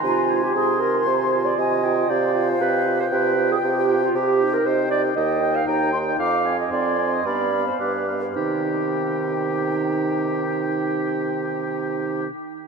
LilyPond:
<<
  \new Staff \with { instrumentName = "Flute" } { \time 4/4 \key c \minor \tempo 4 = 115 aes''4 c'''2 aes''8 g''8 | f''2 g''2~ | g''4 ees''4 g''4 bes''8 c'''8 | d'''8 r8 c'''4 b''4 d'''8 r8 |
g''1~ | g''1 | }
  \new Staff \with { instrumentName = "Oboe" } { \time 4/4 \key c \minor r8 aes''4 aes''4 aes''4 aes''8 | g''8 g''4 g''4 g''4 g''8 | r8 g''4 g''8 g''8 g''4 g''8 | r8 aes''4 aes''8 f''8 f''4 f''8 |
g'1~ | g'1 | }
  \new Staff \with { instrumentName = "Clarinet" } { \time 4/4 \key c \minor f'8. g'16 aes'8 bes'8 c''8. d''16 ees''4 | d''8. c''16 b'8. c''16 b'8. aes'16 g'8. f'16 | g'8. bes'16 c''8 d''8 ees''8. f''16 g''4 | f''8. ees''16 d''8. ees''16 d''8. c''16 b'8. g'16 |
ees'1~ | ees'1 | }
  \new Staff \with { instrumentName = "French horn" } { \time 4/4 \key c \minor r8 f'4 f'4 f'4 f'8 | f'8 f'4 f'4 f'4 f'8 | r8 ees'4 ees'8 ees'8 ees'4 ees'8 | r8 c'4 c'8 b8 b4 b8 |
ees1~ | ees1 | }
  \new Staff \with { instrumentName = "Bassoon" } { \clef bass \time 4/4 \key c \minor c4 c4 c4 c4 | c4 c4 c4 c4 | c4 c4 ees,4 ees,4 | f,4 f,4 g,4 g,4 |
c1~ | c1 | }
>>